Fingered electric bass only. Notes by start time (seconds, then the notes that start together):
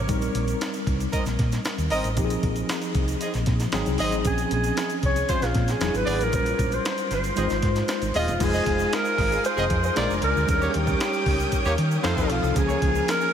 0.09 A#1
0.35 A#1
0.87 C2
1.26 A#1
1.39 A#2
1.78 D#2
1.91 G#1
2.04 A1
2.17 A#1
2.43 A#1
2.95 C2
3.35 A#1
3.47 A#2
3.73 G#1
3.87 C2
4.00 G#1
4.13 A1
4.25 A#1
4.52 A#1
5.03 C2
5.42 A#1
5.55 A#2
5.81 E1
5.94 G#1
6.07 G#1
6.20 A1
6.33 A#1
6.59 A#1
7.11 G1
7.37 G#1
7.51 G#1
7.63 G#2
8.02 G#1
8.15 D#1
8.28 E1
8.41 F1
8.66 F1
9.18 G#1
9.57 F1
9.71 F2
9.97 A#1
10.10 F1
10.23 C#2
10.37 D2
10.49 D#2
10.75 D#2
11.26 C#2
11.65 D#2
11.78 D#3
12.04 F2
12.17 D#2
12.30 B1
12.43 C2
12.56 C#2
12.82 C#2